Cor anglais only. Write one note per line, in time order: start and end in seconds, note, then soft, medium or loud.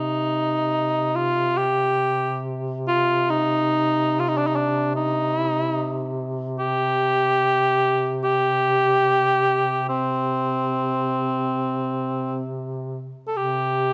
0.00 1.17 D#4 medium
1.15 1.59 F4 medium
1.58 2.44 G4 medium
2.88 3.32 F4 medium
3.30 4.21 D#4 medium
4.20 4.30 F4 medium
4.28 4.39 D#4 medium
4.38 4.48 D4 medium
4.47 4.57 D#4 medium
4.56 4.95 D4 medium
4.96 5.38 D#4 medium
5.38 5.49 E4 medium
5.49 5.61 D#4 medium
5.61 5.73 E4 medium
5.73 6.13 D#4 medium
6.59 8.19 G4 loud
8.24 9.85 G4 loud
9.89 12.43 C4 medium
13.28 13.38 A4 medium
13.37 13.93 G4 medium